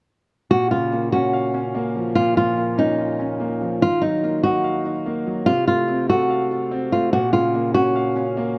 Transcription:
0.50 A#2 F#4
0.71 C#3 F4
0.92 A#3
1.12 C#4 F#4
1.33 F5
1.54 C#4
1.75 A#3
1.96 F3
2.15 A#2 F4
2.37 F3 F4
2.57 A#3
2.78 C#4 D#4
2.99 F4
3.19 C#4
3.40 A#3
3.61 F3
3.82 D#3 F4
4.02 F#3 D#4
4.23 A#3
4.43 D#4 F#4
4.64 F5
4.85 D#4
5.06 A#3
5.26 F#3
5.46 C3 F4
5.68 A3 F4
5.88 C4
6.10 F#4 A4
6.30 F5
6.71 C4
6.92 A3 F4
7.12 A#2 F#4
7.33 C#3 F4
7.54 A#3
7.74 C#4 F#4
7.95 F5
8.16 C#4
8.37 A#3

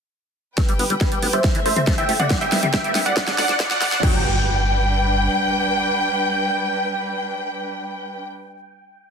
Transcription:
0.58 F#3 G3 G4 B4 G5, kick, snare, closed hi-hat, riser
0.69 G3, closed hi-hat
0.79 G1 B3, open hi-hat
0.90 G1 G3, closed hi-hat
1.01 F#3 B4 G5, kick, snare, closed hi-hat
1.12 G3, closed hi-hat
1.22 D2 B3, open hi-hat
1.33 G1 G3 C5 E5, closed hi-hat
1.44 A3 A4 C5 E5, kick, snare, closed hi-hat
1.55 E3, closed hi-hat
1.66 A1 A3 C5 E5, open hi-hat
1.76 A1 C4, closed hi-hat, mid tom
1.87 A3, kick, snare, closed hi-hat
1.98 E3 E5 G5, closed hi-hat
2.09 A1 A3, open hi-hat
2.19 A1 C4 D5 F#5, closed hi-hat, mid tom
2.30 E3 C4 G4 B4, kick, snare, closed hi-hat
2.41 G3 E5 G5, closed hi-hat
2.52 C2 B3, snare, open hi-hat
2.63 C2 G3, closed hi-hat, mid tom
2.74 E3 E5 G5, kick, snare, closed hi-hat
2.84 G3, closed hi-hat
2.95 G1 B3, snare, open hi-hat
3.06 C2 G3 D5 F#5, closed hi-hat
3.17 D3 D4 A4 F#5, kick, snare, closed hi-hat
3.27 F#3, snare, closed hi-hat, mid tom
3.38 D2 A3 D5 F#5, snare, open hi-hat
3.49 D2 D4, snare, closed hi-hat
3.60 A3, kick, snare, closed hi-hat
3.71 F#3 D5 F#5, snare, closed hi-hat
3.82 D2 A3, snare, open hi-hat, mid tom
3.92 D2 D4, snare, closed hi-hat
4.03 G1 F#3 G3 D4 B4 G5, kick, crash, impact

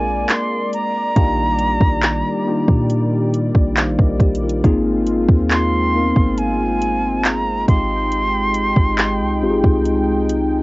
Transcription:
Already playing: A#1 G#3 A#3 C4 D4 F4 G#4 A#4 D5 G#5
0.29 C6, clap, closed hi-hat
0.73 A#5, closed hi-hat
1.16 A#1 D#3 G3 A#3 D4 D#4 F4 G4, kick, closed hi-hat
1.59 closed hi-hat
1.81 A#1, kick
2.03 clap, closed hi-hat
2.47 A#3 D4 D#4 F4 G4
2.68 A#2, kick
2.90 closed hi-hat
3.34 closed hi-hat
3.55 A#1, kick
3.77 C5 F5, clap, closed hi-hat
3.99 A#1 A#4 D#5, kick
4.20 A#1 G4 D5, kick, closed hi-hat
4.35 closed hi-hat
4.43 F4 A#4
4.49 closed hi-hat
4.64 G#1 G#3 A#3 C4 D#4 F4 G#4, kick, closed hi-hat
5.07 closed hi-hat
5.29 D#2, kick
5.51 C6, clap, closed hi-hat
5.94 A#3 B3 D#4 F4 A#4
6.01 C4
6.16 G#1, kick
6.38 G#5, closed hi-hat
6.82 closed hi-hat
7.25 A#5, clap, closed hi-hat
7.68 G#1 G#3 C4 D#4 F4 G4 G5 C6, kick, closed hi-hat
8.12 closed hi-hat
8.54 closed hi-hat
8.76 G#1, kick
8.98 clap, closed hi-hat
9.21 C2
9.42 G#1 G#3 C4 D#4 F4 G4
9.50 G#4
9.64 C2, kick
9.85 closed hi-hat
10.29 closed hi-hat

